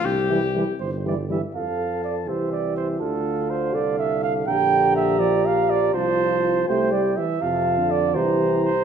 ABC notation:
X:1
M:6/8
L:1/16
Q:3/8=82
K:F
V:1 name="Trumpet"
G6 z6 | a6 e6 | f12 | b12 |
a6 g4 z2 | a6 b6 |]
V:2 name="Trumpet"
z2 G2 G2 c2 d2 e2 | f4 d2 c2 d2 c2 | A4 c2 d2 e2 f2 | g4 e2 d2 f2 d2 |
c6 c2 d2 e2 | f4 d2 c4 c2 |]
V:3 name="French horn"
z2 G,2 G,2 z2 G,2 G,2 | A6 G6 | F6 A6 | G12 |
F6 G4 z2 | F6 G6 |]
V:4 name="Euphonium" clef=bass
z2 E,2 E,2 z2 E,2 E,2 | F,6 E,6 | D,12 | D,6 F,6 |
F,6 A,2 G,2 E,2 | C,3 D,3 E,6 |]
V:5 name="Tuba" clef=bass
C,,6 G,,,6 | F,,6 C,,6 | D,,6 C,,6 | B,,,12 |
C,,6 C,,4 z2 | F,,6 C,,6 |]